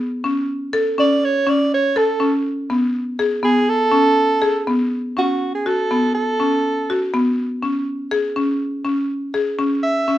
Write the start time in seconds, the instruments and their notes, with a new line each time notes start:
0.24 marimba C#4
0.73 marimba A4
0.98 marimba C#4, soprano saxophone D5
1.24 soprano saxophone C#5
1.47 marimba C#4, soprano saxophone D5
1.74 soprano saxophone C#5
1.96 marimba A4, soprano saxophone A4
2.20 marimba C#4
2.70 marimba B3
3.19 marimba G#4
3.43 marimba B3, soprano saxophone G#4
3.69 soprano saxophone A4
3.92 marimba C#4
4.42 marimba G#4
4.67 marimba B3
5.17 marimba C#4, soprano saxophone F#4
5.55 soprano saxophone G#4
5.66 marimba F#4, soprano saxophone A4
5.91 marimba B3
6.15 soprano saxophone A4
6.40 marimba C#4
6.90 marimba F#4
7.14 marimba B3
7.63 marimba C#4
8.11 marimba G#4
8.36 marimba C#4
8.85 marimba C#4
9.34 marimba G#4
9.59 marimba C#4
9.83 soprano saxophone E5
10.08 marimba C#4